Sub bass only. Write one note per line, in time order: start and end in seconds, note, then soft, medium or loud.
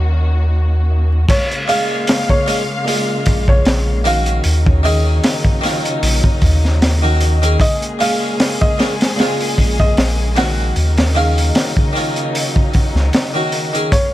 0.00 1.25 D#2 medium
3.27 3.61 A#1 loud
3.65 4.41 A#1 medium
4.45 5.20 D#2 loud
6.02 6.21 A#1 loud
6.42 7.57 D#2 loud
9.58 9.93 A#1 loud
9.97 10.73 A#1 medium
10.76 11.52 D#2 loud
12.95 13.11 C#2 loud